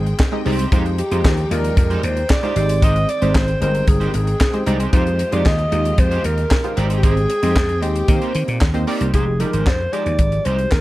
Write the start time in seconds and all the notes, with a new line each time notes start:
Already playing: G#1 D#3 G#3 C4 G#4 G5
0.06 muted clean electric guitar stroke, closed hi-hat
0.19 muted clean electric guitar stroke, kick, snare, clap
0.32 G#3 C4 D#4 G4 D#5, muted clean electric guitar stroke
0.45 C2 G#3 C4 D#4 G4 C5 D5, open hi-hat
0.59 C4 D#4 G4 C5, closed hi-hat
0.72 F2 F3 G#3 D#4 F4 G4 C5, kick, closed hi-hat
0.85 muted clean electric guitar stroke, closed hi-hat
0.98 G4, muted clean electric guitar stroke, closed hi-hat
1.11 F2 G#3 D#4 F4 G4 C5, closed hi-hat
1.24 D#2, muted clean electric guitar stroke, kick, snare, clap
1.37 muted clean electric guitar stroke, closed hi-hat
1.51 D#2 G#3 D#4 F4 G4 A#4 D5, closed hi-hat
1.64 muted clean electric guitar stroke, closed hi-hat
1.77 F2 A#4, muted clean electric guitar stroke, kick, closed hi-hat
1.90 G#3 D#4 G4 C5, closed hi-hat
2.03 D#2 C5, muted clean electric guitar stroke, closed hi-hat
2.17 muted clean electric guitar stroke, closed hi-hat
2.30 D5, muted clean electric guitar stroke, kick, snare, clap
2.43 G#3 D#4 F4 G4 C5, closed hi-hat
2.56 G#1 D#3 G#3 C4 D#4 G4 C5, muted clean electric guitar stroke, closed hi-hat
2.69 muted clean electric guitar stroke, closed hi-hat
2.82 G#3 D#4 G4 C5 D#5, kick, closed hi-hat
2.96 muted clean electric guitar stroke, closed hi-hat
3.08 D5, muted clean electric guitar stroke, closed hi-hat
3.22 G#1 G#3 C4 D#4 G4 C5, closed hi-hat
3.35 G#1 C5, muted clean electric guitar stroke, kick, snare, clap
3.48 muted clean electric guitar stroke, closed hi-hat
3.61 G1 G#3 B3 D#4 G4 A#4 C5, closed hi-hat
3.68 C4
3.74 muted clean electric guitar stroke, closed hi-hat
3.87 G1 G#4, muted clean electric guitar stroke, kick, closed hi-hat
4.00 G#3 D#4 G4 C5, closed hi-hat
4.08 G4
4.14 G#1 G#4, muted clean electric guitar stroke, closed hi-hat
4.27 muted clean electric guitar stroke, closed hi-hat
4.40 muted clean electric guitar stroke, kick, snare, clap
4.53 G#3 C4 D#4 G4 C5, muted clean electric guitar stroke, closed hi-hat
4.66 C2 G#3 C4 D#4 G4 C5 D5, closed hi-hat
4.79 G#3 D#4 G4 C5, closed hi-hat
4.93 F2 G#3 D#4 F4 G4 C5, kick, closed hi-hat
5.06 muted clean electric guitar stroke, closed hi-hat
5.19 muted clean electric guitar stroke, closed hi-hat
5.32 F2 G#3 D#4 F4 G4 C5 D5, closed hi-hat
5.46 D#2 D#5, kick, snare, clap
5.58 muted clean electric guitar stroke, closed hi-hat
5.72 D#2 G#3 D#4 F4 G4 D#5, closed hi-hat
5.85 muted clean electric guitar stroke, closed hi-hat
5.98 F2 C5, muted clean electric guitar stroke, kick, closed hi-hat
6.11 G#3 D#4 G4 C5, closed hi-hat
6.24 D#2 A#4, muted clean electric guitar stroke, closed hi-hat
6.37 muted clean electric guitar stroke, closed hi-hat
6.51 muted clean electric guitar stroke, kick, snare, clap
6.64 G#3 D#4 F4 G4 C5, muted clean electric guitar stroke, closed hi-hat
6.77 G#1 G#3 C4 D#4 G4 C5 D5 G5, closed hi-hat
6.90 C4 D#4 G4 C5, closed hi-hat
6.97 G4
7.03 C4 D#4 G4 G#4 C5, kick, closed hi-hat
7.16 muted clean electric guitar stroke, closed hi-hat
7.29 muted clean electric guitar stroke, closed hi-hat
7.42 F2 G#3 C4 D#4 G4 C5 D#5, closed hi-hat
7.55 F2, muted clean electric guitar stroke, kick, snare, clap
7.69 muted clean electric guitar stroke, closed hi-hat
7.82 D#2 G#3 C4 D#4 G4 C5, closed hi-hat
7.95 muted clean electric guitar stroke, closed hi-hat
8.08 D#3 A#3 C4 D#4 G4 A#4, muted clean electric guitar stroke, kick, closed hi-hat
8.15 C5
8.21 A#3 D#4 G4 C5, closed hi-hat
8.35 D#3, muted clean electric guitar stroke, closed hi-hat
8.48 A#2, muted clean electric guitar stroke, closed hi-hat
8.61 D#2, muted clean electric guitar stroke, kick, snare, clap
8.74 D#2 A#3 C4 D#4 G4 C5, muted clean electric guitar stroke, closed hi-hat
8.87 A#3 C4 D#4 G4 D5, open hi-hat
9.00 C2 A#3 D#4 G4 C5, closed hi-hat
9.13 F1 F3 G#3 D#4 G4 G#4 C5, kick, closed hi-hat
9.27 muted clean electric guitar stroke
9.40 F3 G3 G#3 D#4 G4 A#4 D5, closed hi-hat
9.46 G#3
9.53 G#1 G#3 D#4 G4 C5, closed hi-hat
9.67 F2 C5, kick, snare, clap
9.80 muted clean electric guitar stroke
9.92 F3 G#3 D#4 G4 C5 D5, closed hi-hat
10.06 D#2, muted clean electric guitar stroke, closed hi-hat
10.19 G#1, kick, closed hi-hat
10.32 muted clean electric guitar stroke, closed hi-hat
10.45 C2 G#3 D#4 G4 C5, closed hi-hat
10.59 muted clean electric guitar stroke, closed hi-hat
10.72 D#2 A#4, muted clean electric guitar stroke, kick, snare, clap